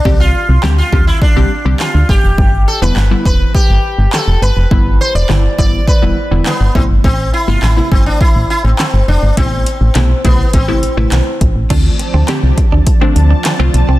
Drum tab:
CC |--------|--------|--------|--------|
HH |--------|--------|--------|--------|
CP |--x---x-|--x---x-|--x---x-|--x---x-|
SD |--o---o-|--o---o-|--o---o-|--o---o-|
BD |o--oo--o|o--oo---|o--oo--o|o--oo---|

CC |--------|x-------|
HH |xxxxxxxx|xxxxxxxx|
CP |--x---x-|--x---x-|
SD |--o---o-|--o---o-|
BD |o--oo--o|o--oo---|